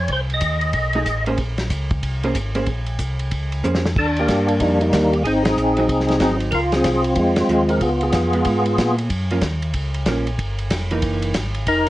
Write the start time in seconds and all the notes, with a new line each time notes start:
0.00 C#5
0.08 C2, kick, ride
0.13 C5
0.30 ride
0.34 D#5
0.41 D#2, kick, hi-hat pedal, ride
0.61 ride
0.73 B1, kick, ride
0.93 A3 D#4 G#4, ride
1.06 A1, kick, hi-hat pedal, ride
1.26 A#3 C#4 G#4 C5, ride
1.38 A#1, kick, ride
1.58 snare, ride
1.70 C#2, kick, hi-hat pedal, ride
1.90 kick, ride
2.03 C2, kick, ride
2.23 A#3 C#4 G#4 C5, ride
2.35 G#1, kick, hi-hat pedal, ride
2.55 A#3 C#4 G#4 C5, ride
2.66 A#1, kick, ride
2.86 ride
2.99 C2, kick, hi-hat pedal, ride
3.19 ride
3.31 C#2, kick, ride
3.52 ride
3.64 F2 A#3 C#4 G#4 C5, hi-hat pedal
3.75 snare
3.85 snare
3.96 D#2 D4 A4, kick, crash
4.16 A#3 G4, ride
4.21 D4
4.28 G2, kick, snare, hi-hat pedal, ride
4.48 ride
4.60 F2 G3 A#3 D#4, kick, ride
4.81 G3 A#3 D#4, ride
4.93 D#2 D#3 G3 A#3 D4, kick, snare, hi-hat pedal, ride
5.12 G4, ride
5.24 G#1 C4 D#4 G#4, kick, ride
5.42 C4 D#4 G#4, snare, ride
5.57 A#1, hi-hat pedal
5.77 F#3 C4 D#4, ride
5.89 C2, kick, ride
6.00 snare
6.09 snare, ride
6.20 G#1 F#3 C4 D#4, kick, snare, hi-hat pedal, ride
6.40 ride
6.51 C#2 F4 A#4, kick, ride
6.72 C4 F4 G#4, snare, ride
6.84 C2, kick, snare, hi-hat pedal, ride
7.04 ride
7.16 F2 G#3 C4 F4, kick, ride
7.36 F2 G#3 F4, snare, ride
7.40 C4
7.49 D#2 F3 G#3 C4, hi-hat pedal
7.69 A#4, ride
7.80 C#2 B3 F4 G#4, kick, ride
8.01 B3 F4 G#4, ride
8.13 F2, kick, snare, hi-hat pedal, ride
8.33 G#3 B3 F4, ride
8.45 G#2, kick, ride
8.66 ride
8.78 A#2, kick, snare, hi-hat pedal, ride
8.98 ride
9.10 F#2, kick, ride
9.31 F3 A#3 C#4, ride
9.42 D#2, kick, snare, hi-hat pedal, ride
9.62 ride
9.74 C#2, kick, ride
9.94 ride
10.06 A#1 F3 A#3 C#4, kick, snare, hi-hat pedal, ride
10.27 ride
10.39 G1, kick, ride
10.59 ride
10.70 F1, kick, snare, hi-hat pedal, ride
10.91 E3 A#3 D#4, ride
11.02 F#1, kick, ride
11.22 ride
11.34 G#1, kick, snare, hi-hat pedal, ride
11.55 ride
11.67 F1 D#4 A#4, kick, ride